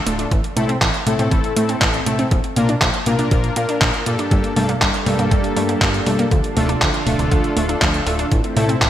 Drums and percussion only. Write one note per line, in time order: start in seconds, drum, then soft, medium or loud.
0.07 closed hi-hat medium
0.19 closed hi-hat soft
0.31 kick loud
0.31 closed hi-hat medium
0.44 closed hi-hat soft
0.57 closed hi-hat medium
0.57 high conga medium
0.69 closed hi-hat soft
0.81 kick loud
0.81 clap loud
0.81 closed hi-hat medium
0.94 closed hi-hat soft
1.07 closed hi-hat medium
1.07 high conga medium
1.19 closed hi-hat soft
1.31 kick loud
1.31 closed hi-hat medium
1.44 closed hi-hat soft
1.57 closed hi-hat loud
1.69 closed hi-hat soft
1.81 kick loud
1.81 clap loud
1.81 closed hi-hat medium
1.94 closed hi-hat soft
2.06 closed hi-hat medium
2.06 high conga medium
2.19 closed hi-hat soft
2.31 kick loud
2.31 closed hi-hat medium
2.44 closed hi-hat soft
2.56 closed hi-hat medium
2.56 high conga medium
2.69 closed hi-hat soft
2.81 kick loud
2.81 clap loud
2.81 closed hi-hat medium
2.94 closed hi-hat soft
3.06 closed hi-hat medium
3.06 high conga medium
3.19 closed hi-hat soft
3.31 kick loud
3.31 closed hi-hat medium
3.44 closed hi-hat soft
3.56 closed hi-hat medium
3.69 closed hi-hat soft
3.81 kick loud
3.81 clap loud
3.81 closed hi-hat medium
3.94 closed hi-hat soft
4.06 closed hi-hat medium
4.19 closed hi-hat soft
4.31 kick loud
4.31 closed hi-hat medium
4.44 closed hi-hat soft
4.56 open hi-hat loud
4.56 high conga medium
4.69 closed hi-hat soft
4.81 kick loud
4.81 clap loud
4.81 closed hi-hat medium
4.94 closed hi-hat soft
5.06 open hi-hat medium
5.06 high conga medium
5.19 closed hi-hat soft
5.31 kick loud
5.31 closed hi-hat medium
5.44 closed hi-hat soft
5.57 open hi-hat loud
5.69 closed hi-hat soft
5.81 kick loud
5.81 clap loud
5.81 closed hi-hat medium
5.94 closed hi-hat soft
6.06 open hi-hat medium
6.06 high conga medium
6.19 closed hi-hat soft
6.31 kick loud
6.31 closed hi-hat medium
6.44 closed hi-hat soft
6.57 open hi-hat loud
6.57 high conga medium
6.69 closed hi-hat soft
6.81 kick loud
6.81 clap loud
6.81 closed hi-hat medium
6.94 closed hi-hat soft
7.07 open hi-hat medium
7.07 high conga medium
7.19 closed hi-hat soft
7.32 kick loud
7.32 closed hi-hat medium
7.44 closed hi-hat soft
7.57 open hi-hat loud
7.69 closed hi-hat soft
7.82 kick loud
7.82 clap loud
7.82 closed hi-hat medium
7.94 closed hi-hat soft
8.07 open hi-hat medium
8.19 closed hi-hat soft
8.32 kick loud
8.32 closed hi-hat medium
8.44 closed hi-hat soft
8.57 open hi-hat loud
8.57 high conga medium
8.69 closed hi-hat soft
8.82 kick loud
8.82 clap loud
8.82 closed hi-hat medium